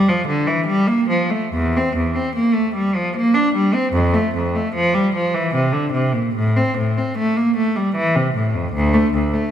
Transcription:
0.08 0.29 F3 medium
0.27 0.48 D3 medium
0.47 0.68 E3 medium
0.66 0.87 G3 medium
0.87 1.09 A#3 medium
1.09 1.30 F3 medium
1.31 1.53 A3 medium
1.53 1.74 E2 medium
1.77 1.96 C4 medium
1.96 2.15 E2 soft
2.16 2.35 C4 medium
2.36 2.55 A#3 medium
2.54 2.74 A3 medium
2.75 2.94 G3 medium
2.96 3.15 F3 medium
3.17 3.35 A#3 medium
3.34 3.54 D4 medium
3.55 3.74 G3 medium
3.75 3.94 C4 medium
3.93 4.13 F2 medium
4.14 4.34 A3 medium
4.35 4.54 F2 medium
4.55 4.74 A3 medium
4.75 4.94 F3 medium
4.94 5.13 G3 medium
5.15 5.33 F3 medium
5.34 5.53 E3 medium
5.54 5.73 C3 medium
5.73 5.92 D3 medium
5.93 6.13 C3 medium
6.13 6.34 A#2 medium
6.35 6.55 A2 medium
6.57 6.77 C4 medium
6.78 6.97 A2 medium
6.98 7.17 C4 medium
7.18 7.37 A3 medium
7.37 7.56 A#3 medium
7.57 7.75 A3 medium
7.76 7.95 G3 medium
7.95 8.14 E3 medium
8.16 8.34 C3 medium
8.36 8.54 A2 medium
8.55 8.73 F2 medium
8.73 8.92 D2 medium
8.94 9.13 A3 medium
9.14 9.32 D2 medium
9.34 9.51 A3 medium

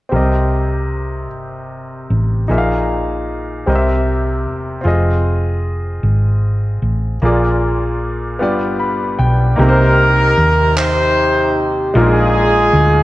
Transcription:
0.09 1.31 C2 medium
0.09 1.26 C3 soft
0.09 2.43 C4 soft
0.09 2.45 G4 soft
0.09 2.45 A#4 soft
0.16 2.47 D#5 medium
1.31 2.06 G1 medium
2.10 2.46 A1 medium
2.48 3.63 A#1 medium
2.48 3.64 A#2 soft
2.48 3.67 D#4 medium
2.48 3.67 G#4 soft
2.48 3.67 A#4 soft
2.48 2.56 E5 soft
2.58 3.72 F5 medium
3.66 4.47 C2 medium
3.66 4.82 C3 soft
3.66 4.80 C4 soft
3.66 4.85 G4 soft
3.66 4.86 A#4 soft
3.66 3.75 D#5 soft
3.75 4.90 E5 medium
4.47 4.83 E1 medium
4.81 6.00 F1 medium
4.81 7.16 C4 medium
4.81 7.17 F4 soft
4.85 7.18 G#4 soft
4.85 7.19 D#5 medium
6.03 6.78 G#1 medium
6.82 7.19 A1 medium
7.22 8.40 A#1 medium
7.22 8.37 A#2 medium
7.22 8.40 A#3 medium
7.22 8.39 F4 soft
7.22 8.41 G#4 medium
7.22 8.41 D5 medium
8.39 9.15 G1 medium
8.39 9.55 G2 medium
8.39 9.58 B3 medium
8.39 9.58 F4 soft
8.39 9.58 G4 soft
8.39 9.60 D5 medium
8.79 9.16 B5 soft
9.19 9.55 B1 medium
9.19 9.55 G5 medium
9.56 10.33 C2 loud
9.56 10.72 C3 medium
9.56 11.89 A#3 medium
9.56 11.90 D#4 medium
9.56 11.91 G4 medium
9.61 10.74 D#4 medium
9.61 10.74 G4 medium
9.61 10.74 A#4 loud
9.61 9.66 A#4 medium
9.69 11.95 C5 medium
10.38 11.91 D#2 medium
10.78 11.91 D#4 medium
10.78 11.91 G4 medium
10.78 11.56 C5 loud
10.78 clap loud
11.94 12.69 A#1 loud
11.94 13.03 A#2 medium
11.94 13.03 G#3 medium
11.94 13.03 D#4 medium
11.94 13.03 F4 medium
11.94 13.03 A#4 medium
11.98 13.03 G#4 medium
12.73 13.03 D2 medium

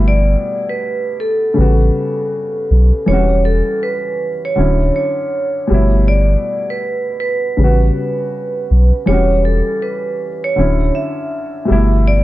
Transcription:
0.00 0.36 G1 loud
0.00 1.52 B2 medium
0.00 1.54 G3 medium
0.00 1.55 A3 medium
0.00 1.56 E4 medium
0.08 0.66 D5 medium
0.69 1.17 B4 medium
1.20 3.03 A4 medium
1.54 3.03 C#3 medium
1.54 3.04 G3 medium
1.58 1.91 A1 medium
1.58 3.05 B3 medium
1.58 3.06 F#4 medium
2.71 2.92 B1 medium
3.06 3.62 E1 loud
3.06 4.54 E3 medium
3.06 3.16 F#3 soft
3.06 3.41 C#5 medium
3.11 4.56 C#4 medium
3.11 4.57 F#4 medium
3.15 4.58 G3 medium
3.45 3.79 A4 medium
3.83 4.41 B4 medium
4.45 4.92 C#5 medium
4.56 4.91 D1 loud
4.56 5.69 D3 medium
4.56 5.69 F#3 medium
4.56 5.70 C#4 medium
4.56 5.70 E4 medium
4.96 6.08 C#5 medium
5.68 6.36 G1 loud
5.68 7.52 B2 medium
5.68 7.53 G3 medium
5.72 7.55 A3 medium
5.72 7.56 E4 medium
6.08 6.66 D5 medium
6.70 7.17 B4 medium
7.20 9.07 B4 medium
7.57 7.91 A1 medium
7.57 9.04 C#3 medium
7.57 9.05 G3 medium
7.62 9.06 B3 medium
7.62 9.08 F#4 medium
8.71 8.92 B1 medium
9.06 9.62 E1 loud
9.06 10.53 E3 medium
9.06 10.55 G3 medium
9.06 9.41 C#5 loud
9.10 10.56 C#4 medium
9.10 10.57 F#4 medium
9.45 9.82 A4 medium
9.82 10.40 B4 medium
10.44 10.92 C#5 medium
10.56 10.91 D1 loud
10.56 11.69 D3 medium
10.56 11.69 F#3 soft
10.56 11.70 C#4 medium
10.56 11.70 E4 medium
10.95 12.07 E5 medium
11.65 12.24 B2 medium
11.65 12.24 G3 medium
11.70 12.24 G1 loud
11.70 12.24 A3 medium
11.70 12.24 E4 medium
12.08 12.24 D5 medium

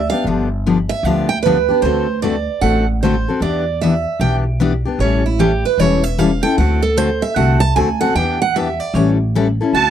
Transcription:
0.10 0.26 B3 soft
0.10 0.26 D4 soft
0.10 0.25 G4 medium
0.10 0.24 F5 loud
0.24 0.88 G1 medium
0.24 0.47 D3 medium
0.24 0.47 F3 medium
0.24 0.47 B3 medium
0.24 0.48 D4 medium
0.24 0.48 G4 medium
0.66 0.77 D3 medium
0.66 0.77 F3 medium
0.66 0.77 B3 medium
0.66 0.77 D4 medium
0.66 0.77 G4 medium
0.89 1.05 E5 loud
1.03 1.67 D2 medium
1.03 1.26 D3 medium
1.03 1.27 F3 medium
1.03 1.26 B3 medium
1.03 1.27 D4 medium
1.03 1.28 F5 medium
1.07 1.27 G4 medium
1.29 1.38 G5 loud
1.43 1.56 D3 medium
1.43 1.56 F3 medium
1.43 1.56 B3 medium
1.43 1.80 B4 medium
1.47 1.57 D4 medium
1.47 1.57 G4 medium
1.69 1.84 B3 soft
1.69 1.83 D4 soft
1.69 1.83 G4 medium
1.82 2.46 D2 medium
1.82 2.05 D3 medium
1.82 2.05 A3 medium
1.82 2.06 C4 medium
1.82 2.06 F#4 medium
1.82 2.19 C5 medium
1.86 2.06 A4 medium
2.22 2.34 D3 medium
2.22 2.35 A3 medium
2.22 2.35 C4 medium
2.22 2.35 F#4 medium
2.22 2.35 A4 medium
2.22 2.59 D5 medium
2.61 3.25 A1 medium
2.61 2.84 D3 medium
2.61 2.84 A3 medium
2.61 2.84 C4 medium
2.61 2.84 F#4 medium
2.61 2.84 A4 medium
2.61 2.86 F#5 medium
3.03 3.14 D3 medium
3.03 3.14 A3 medium
3.03 3.15 C4 medium
3.03 3.14 F#4 medium
3.03 3.15 A4 loud
3.03 3.39 C5 medium
3.28 3.41 C4 soft
3.28 3.42 F#4 soft
3.28 3.42 A4 soft
3.40 4.04 E2 medium
3.40 3.63 E3 medium
3.40 3.63 B3 medium
3.40 3.63 D4 medium
3.40 3.64 G4 medium
3.40 3.79 D5 medium
3.81 3.93 E3 medium
3.81 3.93 B3 medium
3.81 3.94 D4 medium
3.81 3.94 G4 medium
3.81 4.18 E5 medium
4.20 4.83 B1 medium
4.20 4.42 E3 medium
4.20 4.43 B3 medium
4.20 4.43 D4 medium
4.20 4.43 G4 medium
4.20 4.36 G5 medium
4.60 4.71 E3 medium
4.60 4.72 B3 medium
4.60 4.72 D4 loud
4.60 4.72 G4 loud
4.85 5.01 B3 soft
4.85 5.00 D4 soft
4.85 4.99 G4 medium
4.99 5.62 A1 medium
4.99 5.22 E3 medium
4.99 5.22 G3 medium
4.99 5.22 C#4 medium
4.99 5.22 E4 medium
4.99 5.22 A4 medium
4.99 5.24 C#5 medium
5.26 5.39 E4 medium
5.39 5.50 E3 medium
5.39 5.51 G3 medium
5.39 5.51 C#4 medium
5.39 5.51 E4 medium
5.39 5.64 G4 medium
5.39 5.51 A4 medium
5.65 5.79 B4 medium
5.78 6.41 E1 medium
5.78 6.01 E3 medium
5.78 6.01 G3 medium
5.78 6.01 C#4 medium
5.78 6.01 E4 medium
5.78 6.01 A4 medium
5.78 6.04 C#5 medium
6.04 6.19 E5 medium
6.18 6.30 E3 medium
6.18 6.30 G3 medium
6.18 6.30 C#4 medium
6.18 6.30 E4 loud
6.18 6.30 A4 loud
6.18 6.43 F5 medium
6.43 6.58 C#4 soft
6.43 6.58 E4 soft
6.43 6.57 A4 soft
6.43 6.57 G5 loud
6.58 7.21 D2 medium
6.58 6.80 D3 medium
6.58 6.80 A3 medium
6.58 6.80 C4 medium
6.58 6.80 F#4 medium
6.58 6.80 A4 medium
6.58 6.82 F#5 medium
6.82 6.98 A4 medium
6.97 7.08 D3 medium
6.97 7.09 A3 medium
6.97 7.09 C4 medium
6.97 7.09 F#4 medium
6.97 7.09 A4 medium
6.97 7.21 C5 loud
7.22 7.36 E5 loud
7.36 7.70 C2 medium
7.36 7.58 D3 medium
7.36 7.58 A3 medium
7.36 7.58 C4 medium
7.36 7.58 F#4 medium
7.36 7.59 A4 medium
7.36 7.60 F#5 medium
7.60 7.75 A5 loud
7.76 8.09 D2 medium
7.76 7.87 D3 medium
7.76 7.88 A3 medium
7.76 7.88 C4 loud
7.76 7.88 F#4 medium
7.76 7.88 A4 medium
7.76 8.00 G#5 medium
8.01 8.16 C4 soft
8.01 8.16 F#4 medium
8.01 8.15 A4 medium
8.01 8.15 F#5 loud
8.15 8.78 E2 medium
8.15 8.37 E3 medium
8.15 8.37 B3 medium
8.15 8.38 D4 medium
8.15 8.38 G4 medium
8.15 8.40 G5 medium
8.42 8.55 F#5 loud
8.56 8.67 E3 medium
8.56 8.67 B3 medium
8.56 8.67 D4 medium
8.56 8.68 G4 medium
8.56 8.80 E5 medium
8.80 8.95 D5 medium
8.94 9.57 A1 loud
8.94 9.16 E3 medium
8.94 9.16 G3 medium
8.94 9.17 C#4 medium
8.94 9.17 E4 medium
8.94 9.17 A4 medium
8.94 9.10 C#5 medium
9.35 9.46 E3 medium
9.35 9.46 G3 medium
9.35 9.46 C#4 medium
9.35 9.46 E4 loud
9.35 9.47 A4 medium
9.61 9.75 C#4 soft
9.61 9.74 E4 medium
9.61 9.74 A4 medium
9.73 9.90 D2 medium
9.73 9.90 D3 medium
9.73 9.90 A3 medium
9.73 9.90 C4 medium
9.73 9.90 F#4 medium
9.73 9.90 A4 medium
9.73 9.90 A5 loud

